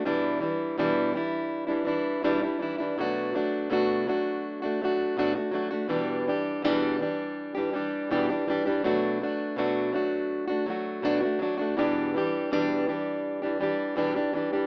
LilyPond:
\new Staff \with { instrumentName = "Steel-string acoustic guitar" } { \time 4/4 \key b \minor \tempo 4 = 82 <e, b, e g d' e'>8 <e g d' e'>8 <e, b, e g d' e'>8 <e g d' e'>8. <e g d' e'>16 <e g d' e'>8 <e, b, e g d' e'>16 <e g d' e'>16 <e g d' e'>16 <e g d' e'>16 | <b, fis a d' fis'>8 <fis a d' fis'>8 <b, fis a d' fis'>8 <fis a d' fis'>8. <a d' fis'>16 <fis a d' fis'>8 <b, fis a d' fis'>16 <a fis'>16 <fis a d' fis'>16 <a d' fis'>16 | <e, b, e g d' g'>8 <e g d' g'>8 <e, b, e g d' g'>8 <e g d' g'>8. <e g d' g'>16 <e g d' g'>8 <e, b, e g d' g'>16 <e g d' g'>16 <e g d' g'>16 <e g d' g'>16 | <b, fis a d' fis'>8 <fis a d' fis'>8 <b, fis a d' fis'>8 <fis a d' fis'>8. <a d' fis'>16 <fis a d' fis'>8 <b, fis a d' fis'>16 <a d' fis'>16 <fis a d' fis'>16 <a d' fis'>16 |
<e, b, e g d' g'>8 <e g d' g'>8 <e, b, e g d' g'>8 <e g d' g'>8. <e g d' g'>16 <e g d' g'>8 <e, b, e g d' g'>16 <e g d' g'>16 <e g d' g'>16 <e g d' g'>16 | }